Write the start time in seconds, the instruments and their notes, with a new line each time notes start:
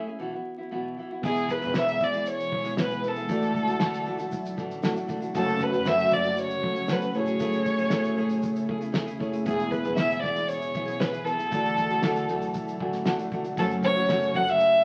0.06 nylon-string guitar C#4 E4 G#4
0.19 nylon-string guitar B2 E3 B3 E4 F#4
0.32 nylon-string guitar B3 E4 F#4
0.58 nylon-string guitar B3 E4 F#4
0.71 nylon-string guitar B2 E3 B3 E4 F#4
0.97 nylon-string guitar E3 B3 E4 F#4
1.10 nylon-string guitar B3 E4 F#4
1.22 upright bass E1, ambient pad B2 E3 G#3 E4, nylon-string guitar E3 B3 E4 G#4, reed electric piano B3 E4 G#4 D#5, violin G#4, kick, crash, shaker
1.32 reed electric piano E5
1.37 shaker
1.49 violin B4, kick, shaker
1.61 upright bass E1, nylon-string guitar B3 E4 G#4, shaker
1.73 nylon-string guitar E3 B3 E4 G#4, snare, shaker
1.77 violin E5
1.87 shaker
2.00 upright bass E1, nylon-string guitar E3 B3, kick, shaker
2.02 nylon-string guitar E4 G#4, violin D5, shaker
2.13 nylon-string guitar B3 E4 G#4, shaker
2.26 shaker
2.30 violin C#5
2.40 shaker
2.52 upright bass B1, nylon-string guitar E3 B3 E4 G#4, kick
2.64 nylon-string guitar B3 E4 G#4, snare, shaker
2.67 shaker
2.77 nylon-string guitar E3 B3 E4 G#4, snare, shaker
2.81 violin B4
2.90 nylon-string guitar B3 E4 G#4, shaker
3.03 nylon-string guitar E3 B3 E4 G#4, shaker
3.08 violin A4
3.16 nylon-string guitar B3 E4 G#4, shaker
3.28 upright bass D2, ambient pad D3 F#3 A3, nylon-string guitar D3 E3 A3 D4 F#4, reed electric piano A3 E4 F#4, kick, shaker
3.30 reed electric piano D5, shaker
3.42 shaker
3.54 kick, shaker
3.67 upright bass D2, nylon-string guitar A3 D4 F#4, shaker
3.80 nylon-string guitar D3 E3 A3 D4 F#4, snare, shaker
3.93 shaker
4.05 upright bass D2, nylon-string guitar E3 A3 D4 F#4, shaker
4.18 nylon-string guitar F#4, shaker
4.19 nylon-string guitar A3 D4, shaker
4.31 shaker
4.32 kick, shaker
4.45 shaker
4.57 upright bass A1, nylon-string guitar E3 A3 D4 F#4, kick, shaker
4.71 shaker
4.82 nylon-string guitar D3 E3 A3 D4 F#4, snare, shaker
4.94 nylon-string guitar A3 D4 F#4, shaker
5.07 upright bass E1, nylon-string guitar E3 A3 D4 F#4, kick, shaker
5.20 nylon-string guitar A3 D4 F#4, shaker
5.33 upright bass F#1, nylon-string guitar F#2 C#3 F#3 A3 C#4 F#4, ambient pad C#3 F#4, reed electric piano A3 C#4 F#4, violin A4, kick, shaker
5.37 reed electric piano C#5
5.48 shaker
5.60 violin B4, kick, shaker
5.72 upright bass F#1, nylon-string guitar F#3 A3 C#4 F#4, shaker
5.85 nylon-string guitar F#2 C#3 F#3 A3 C#4 F#4, violin E5, snare, shaker
5.98 shaker
6.00 shaker
6.10 upright bass F#1, nylon-string guitar F#3 A3 C#4 F#4, violin D5, kick, shaker
6.24 nylon-string guitar F#3 A3 C#4 F#4, shaker
6.36 shaker
6.40 violin C#5
6.49 shaker
6.51 shaker
6.62 upright bass C#2, nylon-string guitar F#3 A3 C#4 F#4, kick
6.75 nylon-string guitar F#3 A3 C#4 F#4, shaker
6.87 nylon-string guitar F#2 C#3 F#3 A3, snare, shaker
6.89 nylon-string guitar C#4 F#4, violin B4, shaker
7.00 nylon-string guitar F#3 A3 C#4 F#4, shaker
7.13 upright bass A1, ambient pad C#3 A3 E4 G#4, reed electric piano A3 E4 G#4, nylon-string guitar A3 C#4 E4 G#4, violin C#5, shaker
7.18 reed electric piano C#5
7.26 nylon-string guitar C#4 E4 G#4, shaker
7.39 nylon-string guitar A3 C#4 E4 G#4, kick, shaker
7.52 shaker
7.65 kick, shaker
7.78 upright bass A1, nylon-string guitar C#4 E4 G#4, shaker
7.90 nylon-string guitar A3 C#4 E4 G#4, snare, shaker
8.04 shaker
8.16 upright bass A1, nylon-string guitar A3 C#4 E4 G#4, shaker
8.29 shaker
8.42 kick, shaker
8.56 shaker
8.68 upright bass E2, nylon-string guitar A3 C#4 E4 G#4, kick
8.80 nylon-string guitar C#4 E4 G#4, shaker
8.83 shaker
8.92 nylon-string guitar A3 C#4 E4 G#4, snare, shaker
9.05 nylon-string guitar C#4 E4 G#4, shaker
9.09 shaker
9.19 upright bass F#1, reed electric piano A3 E4 G#4 C#5, nylon-string guitar A3 C#4 E4 G#4, kick, shaker
9.32 nylon-string guitar C#4 E4 G#4, shaker
9.35 shaker
9.44 upright bass E1, nylon-string guitar E3 B3 E4 G#4, reed electric piano B3 E4 G#4, violin G#4, kick, shaker
9.47 ambient pad B2 E3, reed electric piano E5, shaker
9.60 shaker
9.71 violin B4, kick, shaker
9.83 upright bass E1, nylon-string guitar B3 E4 G#4, shaker
9.96 nylon-string guitar E3 B3 E4 G#4, violin E5, snare, shaker
10.10 shaker
10.22 upright bass E1, nylon-string guitar E3 B3 E4 G#4, violin D5, kick, shaker
10.36 nylon-string guitar B3 E4 G#4, shaker
10.48 violin C#5, shaker
10.62 shaker
10.74 upright bass B1, nylon-string guitar E3 B3 E4 G#4, kick, shaker
10.86 nylon-string guitar B3 E4 G#4, shaker
10.99 nylon-string guitar E3 B3 E4 G#4, violin B4, snare, shaker
11.11 nylon-string guitar B3 E4 G#4, shaker
11.23 nylon-string guitar E3 B3 E4 G#4, violin A4, shaker
11.38 nylon-string guitar B3 E4 G#4, shaker
11.50 upright bass D2, nylon-string guitar D3 E3 A3 D4 F#4, ambient pad D3 F#3 A3 E4, reed electric piano A3 E4 F#4, kick, shaker
11.55 reed electric piano D5
11.65 shaker
11.77 kick, shaker
11.89 upright bass D2, nylon-string guitar A3 D4 F#4, shaker
12.02 nylon-string guitar D3 E3 A3 D4 F#4, snare, shaker
12.15 shaker
12.17 shaker
12.28 upright bass D2, nylon-string guitar E3 A3 D4 F#4, shaker
12.41 shaker
12.54 kick, shaker
12.67 shaker
12.80 upright bass A1, nylon-string guitar E3 A3 D4 F#4, reed electric piano G#5, kick
12.93 snare, shaker
12.95 shaker
13.05 nylon-string guitar D3 E3 A3 D4 F#4, reed electric piano F#5, snare, shaker
13.19 nylon-string guitar A3 D4 F#4, shaker
13.32 upright bass E1, nylon-string guitar E3 A3 D4 F#4, kick, shaker
13.44 nylon-string guitar A3 D4 F#4, shaker
13.56 upright bass F#1, nylon-string guitar F#2 C#3 F#3 A3 C#4 F#4, ambient pad C#3 F#3 F#4, reed electric piano A3 C#4 F#4, violin A4, kick, shaker
13.60 reed electric piano C#5
13.70 shaker
13.83 violin C#5, kick, shaker
13.96 upright bass F#1, nylon-string guitar F#3 A3 C#4 F#4, shaker
14.08 nylon-string guitar F#2 C#3 F#3 A3 C#4 F#4, snare, shaker
14.20 shaker
14.23 shaker
14.33 upright bass F#1, nylon-string guitar F#3 A3 C#4 F#4, violin F#5, kick, shaker
14.46 nylon-string guitar F#3 A3 C#4 F#4, violin E5, shaker
14.59 shaker
14.73 shaker